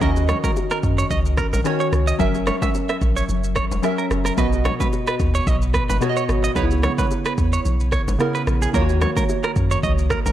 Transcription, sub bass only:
0.02 0.33 D#2 loud
0.83 1.04 F#2 medium
1.11 1.42 C#2 loud
1.53 1.62 A#1 medium
1.92 2.13 C#2 medium
2.20 2.51 F#1 loud
3.02 3.22 A#1 medium
3.29 3.60 F#1 medium
3.71 3.80 E1 medium
4.11 4.31 F#1 medium
4.38 4.69 B1 loud
5.20 5.40 D#2 medium
5.47 5.78 B1 loud
5.89 5.98 G#1 medium
6.29 6.49 G#1 medium
6.56 6.87 C#2 loud
7.38 7.58 E2 medium
7.65 7.96 B1 medium
8.07 8.17 G#1 medium
8.47 8.67 A#1 medium
8.74 9.06 D#2 loud
9.56 9.76 F#2 medium
9.83 10.15 C#2 medium
10.26 10.32 A#1 medium

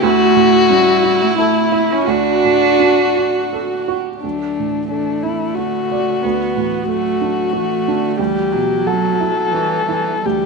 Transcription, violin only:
0.02 1.37 F#4 loud
1.38 2.08 E4 medium
2.06 3.87 F#4 medium
4.20 4.85 D4 soft
4.90 5.24 D4 soft
5.23 5.56 E4 soft
5.54 6.87 F#4 soft
6.88 8.16 F#4 soft
8.20 8.88 G4 soft
8.87 10.27 A4 soft
10.26 10.46 G4 soft

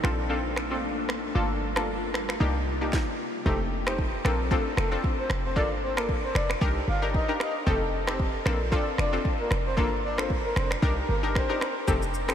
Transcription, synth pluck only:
0.03 0.28 C4 medium
0.03 0.28 D4 medium
0.03 0.28 F4 medium
0.03 0.28 A4 loud
0.29 0.46 C4 loud
0.29 0.47 D4 medium
0.29 0.47 F4 medium
0.29 0.47 A4 loud
0.71 0.85 C4 medium
0.71 0.85 D4 medium
0.71 0.86 F4 medium
0.71 0.86 A4 medium
1.35 1.52 A#3 medium
1.35 1.52 D4 medium
1.35 1.52 F4 medium
1.35 1.52 A4 loud
1.76 1.91 A#3 medium
1.76 1.91 D4 medium
1.76 1.91 F4 medium
1.76 1.91 A4 medium
2.40 2.57 A#3 medium
2.40 2.57 D4 medium
2.40 2.57 D#4 medium
2.40 2.57 G4 loud
2.81 2.96 A#3 medium
2.81 2.96 D4 medium
2.81 2.96 D#4 medium
2.81 2.96 G4 medium
3.46 3.63 A3 medium
3.46 3.63 C4 medium
3.46 3.63 D#4 medium
3.46 3.63 G4 loud
3.87 4.01 A3 medium
3.87 4.01 C4 medium
3.87 4.02 D#4 medium
3.87 4.02 G4 medium
4.25 4.49 C4 medium
4.25 4.49 D4 medium
4.25 4.49 F4 medium
4.25 4.49 A4 loud
4.51 4.68 C4 loud
4.51 4.68 D4 medium
4.51 4.68 F4 medium
4.51 4.68 A4 loud
4.92 5.06 C4 medium
4.92 5.06 D4 medium
4.92 5.07 F4 medium
4.92 5.07 A4 medium
5.56 5.73 A#3 medium
5.56 5.73 D4 medium
5.56 5.73 F4 medium
5.56 5.73 A4 loud
5.97 6.12 A#3 medium
5.97 6.12 D4 medium
5.97 6.12 F4 medium
5.97 6.12 A4 medium
6.61 6.78 D4 loud
6.61 6.78 D#4 medium
6.61 6.78 G4 medium
6.61 6.78 A#4 loud
7.02 7.17 D4 medium
7.02 7.17 D#4 medium
7.02 7.17 G4 medium
7.02 7.17 A#4 medium
7.28 7.43 D4 medium
7.28 7.43 D#4 medium
7.28 7.43 G4 medium
7.28 7.43 A#4 medium
7.66 7.83 C4 medium
7.66 7.83 D#4 medium
7.66 7.84 G4 medium
7.66 7.84 A4 loud
8.07 8.22 C4 medium
8.07 8.22 D#4 medium
8.07 8.22 G4 medium
8.07 8.22 A4 medium
8.46 8.70 C4 medium
8.46 8.70 D4 medium
8.46 8.70 F4 medium
8.46 8.70 A4 loud
8.72 8.89 C4 medium
8.72 8.89 D4 medium
8.72 8.89 F4 medium
8.72 8.89 A4 loud
9.13 9.27 C4 medium
9.13 9.28 D4 medium
9.13 9.28 F4 medium
9.13 9.28 A4 medium
9.77 9.94 A#3 medium
9.77 9.94 D4 medium
9.77 9.94 F4 medium
9.77 9.94 A4 loud
10.18 10.33 A#3 medium
10.18 10.33 D4 medium
10.18 10.33 F4 medium
10.18 10.33 A4 medium
10.82 10.99 D4 medium
10.82 10.99 D#4 medium
10.82 10.99 G4 medium
10.82 10.99 A#4 loud
11.23 11.38 D4 medium
11.23 11.38 D#4 medium
11.23 11.38 G4 medium
11.23 11.38 A#4 medium
11.49 11.64 D4 medium
11.49 11.64 D#4 medium
11.49 11.64 G4 medium
11.49 11.64 A#4 medium
11.87 12.04 C4 medium
11.87 12.04 D#4 medium
11.87 12.05 G4 medium
11.87 12.05 A4 loud
12.28 12.34 C4 medium
12.28 12.34 D#4 medium
12.28 12.34 G4 medium
12.28 12.34 A4 medium

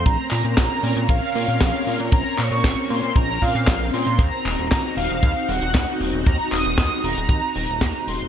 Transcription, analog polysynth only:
0.05 0.56 A#5 loud
0.57 1.10 A#5 loud
1.09 1.33 F5 loud
1.35 1.59 F5 loud
1.61 1.97 F5 loud
2.12 2.39 A#5 loud
2.38 2.92 C#6 loud
2.90 3.17 C6 loud
3.16 3.43 A#5 loud
3.42 3.90 F5 loud
3.93 4.20 C6 loud
4.20 4.70 A#5 loud
4.71 4.95 A#5 loud
4.97 5.50 F5 loud
5.49 5.97 F#5 loud
6.26 6.53 A#5 loud
6.52 6.77 D#6 loud
6.78 7.05 D#6 loud
7.04 8.11 A#5 loud
8.08 8.28 C6 loud

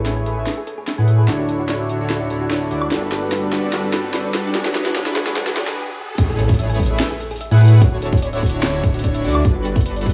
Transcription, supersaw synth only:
0.00 0.24 A3 medium
0.00 0.24 E4 medium
0.00 0.24 G#4 medium
0.00 0.24 B4 medium
0.00 0.24 C#5 medium
0.26 0.34 A3 medium
0.26 0.34 E4 medium
0.26 0.34 G#4 medium
0.26 0.34 B4 medium
0.26 0.34 C#5 medium
0.37 0.48 A3 medium
0.37 0.48 E4 medium
0.37 0.48 G#4 medium
0.37 0.48 B4 medium
0.37 0.48 E5 medium
0.98 1.26 A3 medium
0.98 1.26 E4 medium
0.98 1.26 G#4 medium
0.98 1.26 B4 medium
0.98 1.26 F#5 medium
1.28 1.87 D3 medium
1.28 1.87 D4 medium
1.28 1.87 E4 medium
1.28 1.87 F#4 medium
1.28 1.87 C#5 medium
1.90 1.99 D3 medium
1.90 1.99 D4 medium
1.90 1.99 E4 medium
1.90 1.99 F#4 medium
1.90 1.99 C#5 medium
2.00 2.28 D3 loud
2.00 2.28 D4 medium
2.00 2.28 E4 medium
2.00 2.28 F#4 medium
2.00 2.28 C#5 loud
2.30 2.48 D3 medium
2.30 2.48 D4 medium
2.30 2.48 E4 medium
2.30 2.48 F#4 medium
2.30 2.48 C#5 medium
2.51 2.69 D3 medium
2.51 2.69 D4 medium
2.51 2.69 E4 medium
2.51 2.69 F#4 medium
2.51 2.69 C#5 medium
2.71 2.89 D3 medium
2.71 2.89 D4 medium
2.71 2.89 E4 medium
2.71 2.89 F#4 medium
2.71 2.89 D5 medium
2.92 3.51 G3 medium
2.92 3.51 D4 medium
2.92 3.51 F#4 medium
2.92 3.51 A4 medium
2.92 3.51 B4 medium
3.53 3.61 G3 medium
3.53 3.61 D4 medium
3.53 3.61 F#4 medium
3.53 3.61 A4 medium
3.53 3.61 B4 medium
3.63 3.72 G3 medium
3.63 3.72 D4 medium
3.63 3.72 F#4 medium
3.63 3.72 A4 medium
3.63 3.72 D5 medium
3.73 4.32 G3 medium
3.73 4.32 D4 medium
3.73 4.32 F#4 medium
3.73 4.32 A4 medium
3.73 4.32 B4 medium
4.34 4.43 G3 medium
4.34 4.43 D4 medium
4.34 4.43 F#4 medium
4.34 4.43 A4 medium
4.34 4.43 B4 medium
4.45 4.53 G3 medium
4.45 4.53 D4 medium
4.45 4.53 F#4 medium
4.45 4.53 A4 medium
4.45 4.53 D5 medium
4.55 4.94 F#3 medium
4.55 4.94 D4 medium
4.55 4.94 F#4 medium
4.55 4.94 G#4 medium
4.55 4.94 B4 medium
4.96 5.35 F#3 medium
4.96 5.35 D4 medium
4.96 5.35 F#4 medium
4.96 5.35 G#4 medium
4.96 5.35 B4 medium
5.37 5.55 F#3 medium
5.37 5.56 D4 medium
5.37 5.55 F#4 medium
5.37 5.55 G#4 medium
5.37 5.56 B4 medium
5.57 5.76 F#3 medium
5.57 5.76 D4 medium
5.57 5.76 F#4 medium
5.57 5.76 G#4 medium
5.57 5.76 B4 medium
6.18 6.77 A3 medium
6.18 6.77 E4 medium
6.18 6.77 G#4 medium
6.18 6.77 B4 medium
6.18 6.77 C#5 medium
6.80 6.88 A3 medium
6.80 6.88 E4 medium
6.80 6.88 G#4 medium
6.80 6.88 B4 medium
6.80 6.88 C#5 loud
6.90 7.01 A3 medium
6.90 7.01 E4 medium
6.90 7.01 G#4 medium
6.90 7.01 B4 medium
6.90 7.01 E5 medium
7.51 7.79 A3 medium
7.51 7.79 E4 medium
7.51 7.79 G#4 medium
7.51 7.79 B4 medium
7.51 7.79 F#5 loud
7.82 8.40 D3 medium
7.82 8.40 D4 medium
7.82 8.40 E4 medium
7.82 8.40 F#4 medium
7.82 8.40 C#5 medium
8.43 8.52 D3 medium
8.43 8.52 D4 medium
8.43 8.52 E4 medium
8.43 8.52 F#4 medium
8.43 8.52 C#5 medium
8.53 8.81 D3 loud
8.53 8.81 D4 medium
8.53 8.81 E4 medium
8.53 8.81 F#4 medium
8.53 8.81 C#5 loud
8.84 9.02 D3 medium
8.84 9.02 D4 medium
8.84 9.02 E4 medium
8.84 9.02 F#4 medium
8.84 9.02 C#5 medium
9.04 9.22 D3 medium
9.04 9.22 D4 medium
9.04 9.22 E4 medium
9.04 9.22 F#4 medium
9.04 9.22 C#5 medium
9.24 9.42 D3 medium
9.24 9.42 D4 medium
9.24 9.42 E4 medium
9.24 9.42 F#4 medium
9.24 9.42 D5 medium
9.45 10.04 G3 medium
9.45 10.04 D4 medium
9.45 10.04 F#4 medium
9.45 10.04 A4 medium
9.45 10.04 B4 medium
10.06 10.13 G3 medium
10.06 10.13 D4 medium
10.06 10.13 F#4 medium
10.06 10.13 A4 medium
10.06 10.13 B4 medium

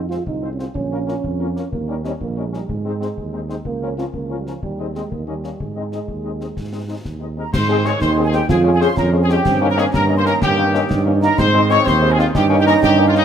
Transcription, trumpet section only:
0.10 0.15 C5 soft
0.43 0.49 C5 soft
0.58 0.64 C5 soft
0.91 0.97 A#4 soft
1.07 1.13 A#4 soft
1.40 1.46 A#4 soft
1.57 1.63 A#4 soft
1.89 1.95 A#4 soft
2.05 2.11 A#4 soft
2.37 2.43 A#4 soft
2.54 2.59 A#4 soft
2.87 2.92 C5 soft
3.02 3.08 C5 soft
3.34 3.40 C5 soft
3.50 3.56 C5 soft
3.81 3.87 A#4 soft
3.98 4.04 A#4 soft
4.30 4.36 A#4 soft
4.46 4.52 A#4 soft
4.79 4.85 D#5 soft
4.94 5.00 D#5 soft
5.27 5.33 D#5 soft
5.44 5.49 D#5 soft
5.76 5.82 D#5 soft
5.92 5.98 D#5 soft
6.24 6.30 D#5 soft
6.40 6.46 D#5 soft
6.72 6.78 D#5 soft
6.89 6.95 D#5 soft
7.21 7.27 D#5 soft
7.37 7.44 A#4 medium
7.37 7.42 D#5 soft
7.53 7.83 C5 loud
7.85 8.01 C#5 loud
8.01 8.12 C5 loud
8.26 8.30 G#4 loud
8.34 8.41 G4 loud
8.49 8.60 G#4 loud
8.74 8.78 G#4 loud
8.81 8.88 C5 loud
8.99 9.09 A#4 loud
9.23 9.26 G#4 loud
9.30 9.67 G4 loud
9.70 9.77 A#4 loud
9.77 9.85 G#4 loud
9.94 10.04 A#4 loud
10.18 10.22 C5 loud
10.25 10.33 A#4 loud
10.41 11.02 G4 loud
11.22 11.37 A#4 loud
11.38 11.68 C5 loud
11.70 11.86 C#5 loud
11.86 12.10 C5 loud
12.12 12.19 G#4 loud
12.19 12.26 F4 loud
12.35 12.46 G4 loud
12.60 12.63 G4 loud
12.66 12.73 A#4 loud
12.83 13.05 G4 loud
13.08 13.11 F4 loud
13.16 13.25 D#4 loud

